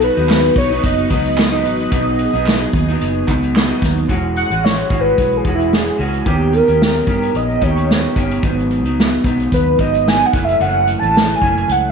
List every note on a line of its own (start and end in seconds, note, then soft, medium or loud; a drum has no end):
0.00 0.17 B2 medium
0.00 0.17 F#3 loud
0.00 0.16 B3 medium
0.00 0.15 D#4 medium
0.00 4.06 D#4 medium
0.00 1.88 F#4 medium
0.00 4.06 B4 loud
0.00 closed hi-hat medium
0.04 0.54 B4 medium
0.16 0.48 D#2 medium
0.16 0.73 F#3 soft
0.16 0.72 B3 medium
0.16 0.69 D#4 medium
0.16 closed hi-hat medium
0.29 snare loud
0.29 clap medium
0.44 closed hi-hat soft
0.56 0.78 B1 loud
0.56 0.82 C#5 medium
0.56 kick loud
0.56 closed hi-hat medium
0.71 1.09 F#3 soft
0.71 1.10 B3 soft
0.71 1.10 D#4 medium
0.71 closed hi-hat medium
0.83 1.05 F#1 medium
0.83 3.52 D#5 loud
0.83 kick medium
0.83 closed hi-hat loud
1.09 1.65 C#2 loud
1.09 1.52 B2 medium
1.09 1.52 F#3 medium
1.09 1.51 B3 medium
1.09 1.51 D#4 medium
1.09 kick medium
1.09 closed hi-hat medium
1.25 closed hi-hat medium
1.38 snare loud
1.38 clap medium
1.52 1.90 B2 medium
1.52 1.91 F#3 medium
1.52 1.92 B3 medium
1.52 1.91 D#4 medium
1.65 1.87 A1 medium
1.65 closed hi-hat medium
1.80 closed hi-hat medium
1.91 2.25 B1 medium
1.91 2.34 B2 medium
1.91 2.34 F#3 loud
1.91 2.34 B3 loud
1.91 2.32 D#4 loud
1.91 4.07 G#4 medium
1.91 kick loud
1.91 closed hi-hat medium
2.19 closed hi-hat medium
2.33 2.65 B1 medium
2.33 2.90 F#3 medium
2.33 2.89 B3 medium
2.33 2.87 D#4 medium
2.33 closed hi-hat medium
2.46 snare loud
2.46 clap medium
2.62 closed hi-hat soft
2.73 2.95 D#2 loud
2.73 kick loud
2.73 closed hi-hat medium
2.88 3.27 F#3 soft
2.88 3.28 B3 medium
2.88 3.28 D#4 medium
2.88 closed hi-hat medium
3.01 3.22 F#1 medium
3.01 closed hi-hat loud
3.27 3.71 C#2 medium
3.27 3.69 B2 medium
3.27 3.70 F#3 medium
3.27 3.70 B3 medium
3.27 3.69 D#4 medium
3.27 kick medium
3.27 clap medium
3.27 closed hi-hat medium
3.43 closed hi-hat medium
3.56 snare loud
3.56 clap medium
3.69 4.10 B2 medium
3.69 4.08 F#3 medium
3.69 4.09 B3 medium
3.69 4.09 D#4 medium
3.69 closed hi-hat soft
3.82 4.04 D#2 medium
3.82 kick medium
3.82 snare soft
3.82 closed hi-hat medium
3.97 closed hi-hat medium
4.08 4.43 E1 loud
4.08 4.51 E3 medium
4.08 4.51 G#3 loud
4.08 4.51 C#4 medium
4.08 4.50 F#4 loud
4.08 kick medium
4.08 closed hi-hat medium
4.36 4.66 F#5 loud
4.36 closed hi-hat medium
4.50 4.82 A1 medium
4.50 4.89 G#3 soft
4.50 4.90 C#4 soft
4.50 4.90 F#4 medium
4.50 closed hi-hat medium
4.64 5.02 C#5 loud
4.64 snare loud
4.79 closed hi-hat soft
4.90 5.12 G#1 medium
4.90 5.43 E3 medium
4.90 5.44 G#3 medium
4.90 5.46 C#4 medium
4.90 5.46 F#4 medium
4.90 kick medium
4.90 closed hi-hat medium
5.01 5.39 B4 medium
5.06 closed hi-hat soft
5.18 5.40 B1 medium
5.18 kick medium
5.18 closed hi-hat medium
5.33 closed hi-hat soft
5.37 5.54 G#4 medium
5.44 5.88 E1 medium
5.44 5.97 E3 medium
5.44 5.98 G#3 medium
5.44 6.00 C#4 medium
5.44 5.99 F#4 medium
5.44 kick medium
5.44 closed hi-hat medium
5.55 5.75 E4 medium
5.60 closed hi-hat medium
5.73 6.00 G#4 medium
5.73 snare loud
5.98 6.21 C#2 medium
5.98 6.24 E3 medium
5.98 6.25 G#3 medium
5.98 6.25 C#4 medium
5.98 6.27 F#4 medium
5.98 open hi-hat medium
6.14 closed hi-hat medium
6.25 6.60 D#2 loud
6.25 6.68 D#3 medium
6.25 6.68 B3 medium
6.25 6.68 C#4 medium
6.25 6.55 G4 medium
6.25 6.66 G4 medium
6.25 kick medium
6.25 closed hi-hat medium
6.42 closed hi-hat soft
6.53 7.38 A#4 loud
6.53 closed hi-hat medium
6.67 7.00 D#2 medium
6.67 7.06 B3 soft
6.67 7.07 C#4 medium
6.67 7.07 G4 soft
6.67 closed hi-hat medium
6.82 snare loud
7.06 7.29 G2 medium
7.06 7.60 D#3 medium
7.06 7.61 B3 medium
7.06 7.61 C#4 medium
7.06 7.62 G4 medium
7.06 kick medium
7.06 closed hi-hat medium
7.23 closed hi-hat soft
7.34 7.56 A#1 medium
7.34 7.65 D#5 loud
7.34 closed hi-hat medium
7.50 closed hi-hat soft
7.61 8.05 D#2 medium
7.61 8.15 D#3 medium
7.61 8.16 B3 medium
7.61 8.16 C#4 medium
7.61 8.17 G4 medium
7.61 8.17 C#5 loud
7.61 kick medium
7.61 closed hi-hat medium
7.77 closed hi-hat medium
7.91 snare loud
8.15 8.38 G1 loud
8.15 8.43 D#3 medium
8.15 8.43 B3 medium
8.15 8.44 C#4 medium
8.15 8.44 G4 medium
8.15 kick medium
8.15 closed hi-hat medium
8.31 closed hi-hat medium
8.42 8.84 G#1 medium
8.42 8.85 G#2 medium
8.42 8.85 F#3 medium
8.42 8.84 B3 loud
8.42 8.83 D#4 medium
8.42 kick medium
8.42 closed hi-hat medium
8.59 closed hi-hat soft
8.71 closed hi-hat medium
8.84 9.16 C#2 medium
8.84 9.23 F#3 medium
8.84 9.24 B3 medium
8.84 9.24 D#4 medium
8.84 closed hi-hat medium
9.00 snare loud
9.23 9.46 B1 medium
9.23 9.77 G#2 medium
9.23 9.78 F#3 medium
9.23 9.78 B3 medium
9.23 9.79 D#4 medium
9.23 kick loud
9.23 closed hi-hat medium
9.40 closed hi-hat medium
9.52 9.74 D#2 medium
9.52 9.78 B4 medium
9.52 kick medium
9.52 closed hi-hat loud
9.78 10.22 G#1 medium
9.78 10.32 G#2 medium
9.78 10.33 F#3 medium
9.78 10.34 B3 medium
9.78 10.34 D#4 medium
9.78 10.10 D#5 medium
9.78 kick medium
9.78 closed hi-hat medium
9.94 closed hi-hat medium
10.08 10.27 G#5 loud
10.08 snare loud
10.21 closed hi-hat soft
10.26 10.46 F#5 loud
10.32 10.55 F#1 medium
10.32 10.58 F#2 medium
10.32 10.59 E3 medium
10.32 10.60 A3 medium
10.32 10.60 C#4 medium
10.32 kick loud
10.32 closed hi-hat medium
10.44 10.61 E5 loud
10.49 closed hi-hat medium
10.59 10.94 F#1 loud
10.59 11.02 F#2 medium
10.59 11.03 E3 medium
10.59 11.02 A3 medium
10.59 11.01 C#4 medium
10.59 11.01 F#5 loud
10.59 closed hi-hat medium
10.87 closed hi-hat medium
10.99 11.34 A1 medium
10.99 11.42 C#4 soft
10.99 11.34 A5 loud
10.99 closed hi-hat medium
11.03 11.41 E3 soft
11.03 11.42 A3 soft
11.17 snare loud
11.35 11.73 G#5 loud
11.41 11.63 F#1 loud
11.41 11.92 F#2 medium
11.41 11.92 E3 medium
11.41 11.92 A3 medium
11.41 11.92 C#4 medium
11.41 kick medium
11.41 closed hi-hat medium
11.57 closed hi-hat soft
11.68 11.90 C#2 medium
11.68 11.91 F#5 loud
11.68 closed hi-hat medium